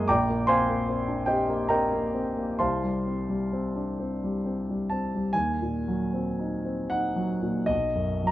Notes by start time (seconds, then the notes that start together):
Already playing: F#2 G#3 A#3 D#5 G#5 C6 D#6
0.08 A#1 D5 G5 A#5 D6
0.29 A#3
0.47 C4 C5 F5 G#5 C6
0.69 A#3
0.89 C4
1.08 D4
1.26 C4 G4 C5 D#5 G5
1.49 A#3
1.69 C4 A#4 D#5 G5 A#5
1.92 A#3
2.14 C4
2.37 A#3
2.59 C2 C5 F5 A5 C6
2.84 G3
3.06 C4
3.29 G3
3.53 C4
3.76 D4
4.00 C4
4.24 G3
4.46 C4
4.69 G3
4.90 C4 A5
5.15 G3
5.33 D#2 G#5
5.62 A#2
5.88 F#3
6.14 C4
6.40 D#4
6.65 C4
6.90 D#4 F#5
7.16 F#3
7.42 A#2
7.66 B1 D#5
7.95 F#2
8.24 F#3 A#5